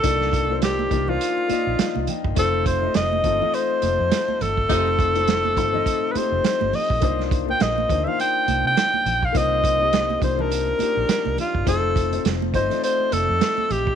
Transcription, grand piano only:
0.00 0.02 A#3 medium
0.00 0.42 A#3 medium
0.00 0.03 D4 medium
0.00 0.43 D4 medium
0.00 0.04 D#4 medium
0.00 0.43 D#4 medium
0.00 0.05 F4 medium
0.00 2.39 A4 medium
0.00 0.52 C5 medium
0.05 0.44 F4 medium
0.05 0.44 D5 loud
0.48 0.86 A#3 medium
0.48 0.86 D4 medium
0.48 0.87 D#4 medium
0.48 0.87 F4 medium
0.48 0.88 C5 medium
0.90 1.05 A#3 medium
0.90 1.06 D4 medium
0.90 1.06 D#4 medium
0.90 1.07 F4 medium
0.90 1.07 A#4 medium
1.07 1.44 A#3 medium
1.07 1.45 D4 medium
1.07 1.45 D#4 medium
1.07 1.46 F4 medium
1.07 1.46 C5 medium
1.48 2.27 A#3 medium
1.48 2.27 D#4 medium
1.48 2.28 F4 medium
1.48 2.27 D5 medium
1.48 2.28 D#5 medium
1.79 2.06 F5 medium
2.08 2.35 G5 medium
2.35 2.75 A3 loud
2.35 2.76 C4 medium
2.35 2.76 D#4 medium
2.35 2.77 F4 medium
2.35 2.77 C5 loud
2.81 3.18 A3 medium
2.81 3.19 C4 medium
2.81 3.19 D#4 medium
2.81 3.20 F4 medium
2.81 3.20 D#5 medium
3.23 3.38 A3 medium
3.23 3.39 C4 medium
3.23 3.39 D#4 medium
3.23 3.39 F4 medium
3.23 3.40 A4 medium
3.39 4.39 A3 medium
3.39 4.39 C4 medium
3.39 4.40 D#4 medium
3.39 4.40 F4 medium
3.39 4.41 D#5 medium
4.68 5.08 A3 medium
4.68 5.09 C4 medium
4.68 5.09 D#4 medium
4.68 5.09 F4 medium
4.68 5.10 C5 loud
5.14 5.51 A3 medium
5.14 5.52 C4 medium
5.14 5.52 D#4 medium
5.14 5.52 F4 medium
5.14 5.53 C5 medium
5.56 5.70 A3 medium
5.56 5.71 C4 medium
5.56 5.72 D#4 medium
5.56 5.72 F4 medium
5.56 5.72 C5 medium
5.72 6.09 A3 medium
5.72 6.09 C4 medium
5.72 6.10 D#4 medium
5.72 6.10 F4 medium
5.72 6.11 D#5 loud
6.13 6.91 A3 medium
6.13 6.92 C4 medium
6.13 6.92 D#4 medium
6.13 6.93 F4 medium
6.13 6.93 G4 medium
7.00 7.40 A#3 medium
7.00 7.41 D4 medium
7.00 7.41 D#4 medium
7.00 7.42 F4 medium
7.00 7.42 C5 loud
7.46 7.84 A#3 medium
7.46 7.84 D4 medium
7.46 7.84 D#4 medium
7.46 7.85 F4 medium
7.46 7.85 C5 medium
7.88 8.03 A#3 medium
7.88 8.04 D4 medium
7.88 8.04 D#4 medium
7.88 8.05 F4 medium
7.88 8.05 C5 medium
8.05 9.04 A#3 medium
8.05 9.04 D4 medium
8.05 9.05 D#4 medium
8.05 9.05 F4 medium
8.05 9.06 C5 medium
9.33 9.73 A#3 loud
9.33 9.73 C4 medium
9.33 9.74 D#4 loud
9.33 9.74 F4 medium
9.33 9.74 C5 loud
9.78 10.16 A#3 medium
9.78 10.16 C4 medium
9.78 10.17 D#4 medium
9.78 10.17 F4 medium
9.78 10.18 G4 medium
10.19 10.35 A#3 medium
10.19 10.36 D4 medium
10.19 10.36 D#4 medium
10.19 10.37 F4 medium
10.19 10.37 C5 medium
10.37 10.74 A#3 medium
10.37 10.75 D4 medium
10.37 10.75 D#4 medium
10.37 10.75 F4 medium
10.37 10.76 A5 medium
10.78 11.56 A#3 medium
10.78 11.57 D4 medium
10.78 11.57 D#4 medium
10.78 11.57 F4 medium
10.78 11.58 G4 medium
11.65 12.05 A3 loud
11.65 12.06 C4 medium
11.65 12.06 D#4 medium
11.65 12.06 F4 medium
11.65 12.07 C5 loud
12.11 12.48 A3 medium
12.11 12.49 C4 medium
12.11 12.49 D#4 medium
12.11 12.49 F4 medium
12.11 12.50 C5 medium
12.52 12.68 A3 medium
12.52 12.68 C4 medium
12.52 12.69 D#4 medium
12.52 12.69 F4 medium
12.52 12.69 D#5 medium
12.69 13.69 A3 medium
12.69 13.69 C4 medium
12.69 13.70 D#4 medium
12.69 13.70 F4 medium
12.69 13.70 D5 medium

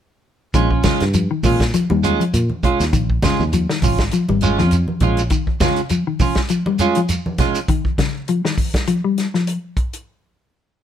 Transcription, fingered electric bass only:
0.55 0.81 A#1 medium
1.02 1.28 G2 medium
1.44 1.70 A#2 medium
1.91 2.17 D#2 medium
2.34 2.48 A#2 medium
2.63 muted fingered electric bass stroke soft
2.80 2.92 D#2 medium
2.93 3.20 A#1 medium
3.40 3.66 D#2 medium
3.83 4.09 G#1 medium
4.30 4.61 G#1 medium
4.60 4.85 F2 medium
5.02 5.28 A#1 medium

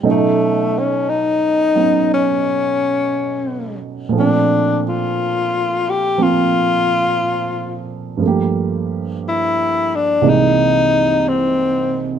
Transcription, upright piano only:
0.03 4.13 B2 soft
0.03 1.74 F#3 soft
0.03 4.13 A3 soft
0.03 1.77 C#4 soft
0.03 4.14 D#4 medium
1.75 4.14 F#3 soft
1.75 4.14 B3 soft
1.75 4.15 C#4 soft
4.09 8.19 A#2 soft
4.09 6.17 F3 soft
4.15 8.21 A3 soft
4.15 6.19 C4 soft
4.21 8.24 D4 soft
6.18 8.18 F3 soft
6.18 8.21 A#3 soft
6.18 8.22 C4 soft
8.17 10.21 G2 soft
8.17 10.22 F3 soft
8.22 10.24 A3 soft
8.22 10.22 A#3 soft
8.27 10.26 G4 soft
10.22 12.19 C2 soft
10.22 12.19 C3 soft
10.22 12.19 E3 soft
10.22 12.19 G#3 soft
10.22 12.19 A#3 soft
10.22 12.19 D#4 medium

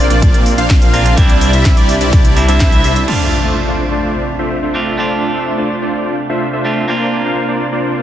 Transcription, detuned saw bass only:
0.10 0.56 A#1 loud
0.58 0.79 A#1 medium
0.82 1.15 A#1 loud
1.18 1.51 C2 loud
1.53 1.75 C2 loud
1.77 1.99 C2 loud
2.01 2.46 C2 loud
2.48 2.82 C2 loud
2.84 3.06 C2 loud

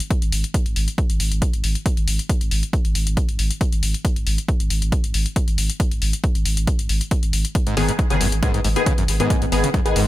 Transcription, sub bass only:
0.22 0.32 G#1 medium
0.32 0.44 G#1 loud
0.66 0.76 G#1 medium
0.76 0.88 G#1 loud
1.10 1.19 G#1 medium
1.20 1.31 G#1 loud
1.32 1.42 G#1 medium
1.54 1.63 G#1 medium
1.64 1.75 G#1 loud
1.97 2.07 G#1 medium
2.08 2.19 G#1 loud
2.41 2.51 G#1 medium
2.51 2.63 G#1 loud
2.85 2.95 G#1 medium
2.95 3.06 G#1 loud
3.07 3.17 G#1 medium
3.29 3.38 G#1 medium
3.39 3.50 G#1 loud
3.73 3.82 G#1 medium
3.83 3.94 G#1 loud
4.16 4.26 G#1 medium
4.27 4.38 G#1 loud
4.60 4.70 G#1 medium
4.70 4.81 G#1 medium
4.82 4.92 G#1 medium
5.04 5.14 G#1 medium
5.14 5.26 G#1 loud
5.48 5.57 G#1 medium
5.58 5.69 G#1 loud
5.91 6.01 G#1 medium
6.02 6.13 G#1 loud
6.35 6.45 G#1 medium
6.46 6.57 G#1 medium
6.57 6.67 G#1 medium
6.79 6.89 G#1 medium
6.89 7.01 G#1 loud
7.23 7.32 G#1 medium
7.33 7.44 G#1 loud
7.67 7.76 G#1 medium
7.77 7.88 G#1 loud
8.10 8.20 G#1 medium
8.21 8.32 G#1 medium
8.32 8.42 G#1 medium
8.54 8.64 G#1 medium
8.65 8.76 G#1 loud
8.98 9.08 G#1 medium
9.08 9.20 G#1 loud
9.42 9.51 G#1 medium
9.52 9.63 G#1 loud
9.86 9.95 G#1 medium
9.96 10.07 G#1 loud

